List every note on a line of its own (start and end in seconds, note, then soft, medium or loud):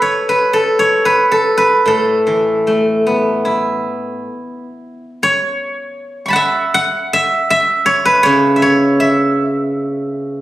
0.00 0.53 A4 medium
0.00 0.29 B4 medium
0.00 0.79 C#5 medium
0.29 1.05 B4 medium
0.53 1.31 A4 medium
0.79 2.70 C#5 medium
1.05 1.57 B4 medium
1.32 1.87 A4 medium
1.57 3.62 B4 medium
1.86 4.21 A2 medium
1.86 4.39 A4 medium
2.27 3.83 E3 soft
2.67 4.24 A3 soft
3.07 4.64 B3 soft
3.45 5.04 E4 soft
5.23 7.14 C#5 medium
6.26 7.63 B5 soft
6.26 7.51 C#6 soft
6.30 6.74 F#5 medium
6.30 7.75 A5 soft
6.36 7.13 E5 medium
6.74 8.35 F#5 loud
7.13 7.50 E5 loud
7.50 8.56 E5 medium
7.86 8.23 C#5 medium
8.05 10.10 B4 medium
8.23 10.41 C#3 medium
8.23 8.62 C#5 loud
8.56 9.00 E5 medium
8.62 10.41 C#5 medium
9.00 10.41 E5 medium